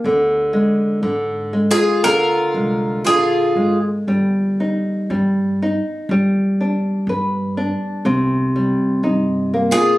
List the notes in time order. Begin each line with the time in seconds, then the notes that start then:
0.04 D2 D3
0.53 G#3
1.02 G#2 D3
1.53 G#3
1.71 F4 G#4
2.03 D2 D3 F4 A#4
2.54 C2 G#3
3.05 A#1 D3 F4 G#4
3.55 G#1 G#3
4.07 G1 G3
4.60 D#4
5.10 G2 G3
5.62 D#4
6.09 G1 G3
6.61 D4
7.07 G2 B4
7.57 D4
8.05 C2 C3
8.56 G3
9.03 G2 D#4
9.54 A#3
9.71 F4 G#4